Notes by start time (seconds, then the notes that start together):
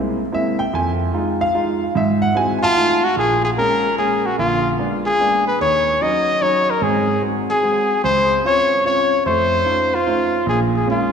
Already playing: G#3 A#3 C4 E4
0.32 G#3 A#3 C4 E4 E5
0.59 G5
0.73 F2 G#5
1.13 G#3 D#4 F4
1.41 F5
1.54 G#3 D#4 F4
1.95 G#2 E5
2.22 F#5
2.35 G#3 C4 E4 F#4 G#5
2.59 G#5
2.63 F4 A5
2.76 A3 D#4 F4
3.04 F#4
3.16 A#1 A#2 G#4
3.44 G#4
3.58 G#3 A#3 C#4 A#4
3.97 G#3 A#3 C#4 G#4
4.26 F#4
4.38 A#1 D3 F4
4.79 G#3 A#3 B3 D4
5.06 G#4
5.20 G#3 A#3 B3 D4
5.47 B4
5.60 D#2 D#3 C#5
6.01 F#3 C#4 D#4 D#5
6.41 F#3 C#4 D#4 C#5
6.70 A#4
6.82 G#2 C4 G#4
7.22 G#3 C4 F#4
7.50 G#4
7.63 G#3 C4 F#4
8.04 C#2 C5
8.44 C4 C#4 F4 C#5
8.84 C4 C#4 F4 C#5
9.26 F2 A3 C5
9.65 A3 C#4 D#4 F4
9.95 F4
10.07 A3 C#4 D#4 F4
10.46 A#1 A#2 G#4
10.76 G#4
10.86 G#3 A#3 C#4
10.90 F4